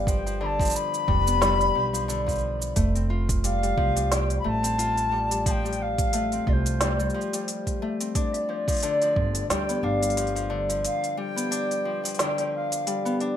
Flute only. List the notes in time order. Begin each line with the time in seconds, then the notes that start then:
0.08 G5
0.42 A5 B5
0.75 B5
3.44 F5
4.12 G5
4.39 B5
4.47 A5
5.47 G5 A5
5.82 F5
6.48 D5
6.52 C5
8.15 D5
8.32 D5 E5
8.49 C5 D5
9.50 G5
9.83 F5
10.85 F5
11.18 G5
12.21 G5
12.55 F5